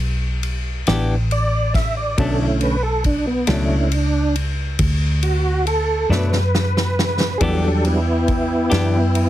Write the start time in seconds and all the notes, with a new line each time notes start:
Already playing: B1
0.43 ride
0.87 A1 E3 B3 D4 G4, snare, ride
1.31 D5, ride
1.74 E5, kick, snare, ride
1.97 D5
2.18 B1 B2 D3 F#3 A3 C#4 D4 A4, kick, ride
2.39 E4
2.61 B4, ride
2.83 A4
3.04 D4, kick, ride
3.27 B3
3.47 C#2 B2 F#3 A3 C#4 D4 E4, snare, ride
3.89 C#4, ride
3.94 D4
4.36 ride
4.79 D2, kick, ride
5.23 F#4, ride
5.67 A4, ride
6.09 F#2 B2 F#3 A3 D4 B4, snare
6.33 snare
6.55 snare
6.77 snare
6.99 snare
7.20 snare
7.38 E2 E3 D4 G#4 D5 E5 G5, kick, ride
7.42 F#3 G3 B3 D4 G4 A4
7.85 B3 E4, ride
8.28 kick, ride
8.70 F#2 E3 B3 D4 G4, snare, ride
9.15 ride